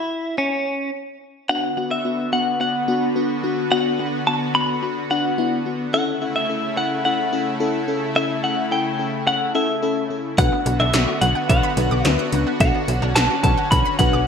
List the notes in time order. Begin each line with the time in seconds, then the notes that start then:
Already playing: E4
0.38 C#4
1.49 D3 B3 D4 F#4 F#5
1.77 B3 D4 F#4
1.91 E5
2.05 B3 D4 F#4
2.33 B3 D4 F#4 F#5
2.60 B3 D4 F#4 F#5
2.88 B3 D4 F#4
3.16 B3 D4 F#4
3.44 B3 D4 F#4
3.71 B3 D4 F#4 F#5
3.99 B3 D4 F#4
4.27 B3 D4 F#4 A5
4.55 B3 D4 F#4 B5
4.82 B3 D4 F#4
5.10 B3 D4 F#4 F#5
5.38 B3 D4 E4
5.66 B3 D4 F#4
5.93 C#3 A3 C#4 E4 A4 F#5
6.21 C#4 E4 A4
6.36 E5
6.49 C#4 E4 A4
6.77 C#4 E4 A4 F#5
7.05 C#4 E4 A4 F#5
7.33 C#4 E4 A4
7.60 C#4 E4 A4
7.88 C#4 E4 A4
8.16 C#4 E4 A4 E5
8.44 C#4 E4 A4 F#5
8.71 C#4 E4 A4 G5
8.99 C#4 E4 A4
9.27 C#4 E4 A4 F#5
9.55 C#4 E4 A4 E5
9.83 C#4 E4 A4
10.10 C#4 E4 A4
10.38 B1 D3 F#3 B3 D4 F#4 B4 F#5, kick, closed hi-hat
10.52 B3
10.66 B1 F#3 D4 F#4 B4, closed hi-hat
10.80 B1 D4 E5
10.93 B1 F#3 D4 F#4 A4, snare, closed hi-hat
11.07 F#4
11.21 B1 F#3 D4 F#4 B4 F#5, closed hi-hat
11.35 F#5
11.49 B1 F#3 D4 F#4 B4 F#5, kick, closed hi-hat
11.63 B5
11.77 B1 F#3 D4 F#4 B4, closed hi-hat
11.91 B1 D6
12.05 D2 F#3 D4 F#4 B4 E5, snare, closed hi-hat
12.19 F#6
12.32 C#2 F#3 D4 F#4 B4, closed hi-hat
12.47 B3
12.60 B1 F#3 C#4 D4 F#4 A4 F#5, kick, closed hi-hat
12.75 B3
12.88 B1 F#3 D4 F#4 B4, closed hi-hat
13.02 B1 D4
13.16 B1 F#3 D4 B4 A5, snare, closed hi-hat
13.30 F#4
13.43 B1 F#3 D4 F#4 B4 A5, kick, closed hi-hat
13.58 F#5
13.71 B1 F#3 D4 F#4 B4 B5, kick, closed hi-hat
13.85 B5
13.99 B1 F#3 D4 F#4 B4 F#5, kick, closed hi-hat
14.13 B1 D6